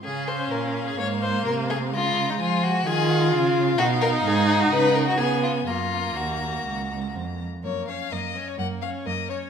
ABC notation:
X:1
M:4/4
L:1/16
Q:1/4=127
K:Db
V:1 name="Violin"
f16 | b4 a4 a2 g2 f4- | [K:F#] =f8 ^f4 g4 | a12- a2 z2 |
c2 e2 d3 c f2 e2 d2 c2 |]
V:2 name="Violin"
A2 c2 B3 A d2 c2 B2 A2 | F3 E F2 G2 A6 z2 | [K:F#] F2 A2 G3 F B2 A F G2 E2 | E4 F8 z4 |
A2 c2 A2 c2 A2 c2 A2 c2 |]
V:3 name="Viola"
D8 B,8 | A,8 F8 | [K:F#] D12 B,4 | A,12- A,2 z2 |
A,2 C2 A,2 C2 A,2 C2 A,2 C2 |]
V:4 name="Cello" clef=bass
D,4 B,,4 A,,4 C,4 | D,4 F,4 E,4 D,4 | [K:F#] B,,4 G,,4 C,4 C,4 | F,,4 D,,4 C,,4 E,,4 |
F,,4 F,,4 F,,4 F,,4 |]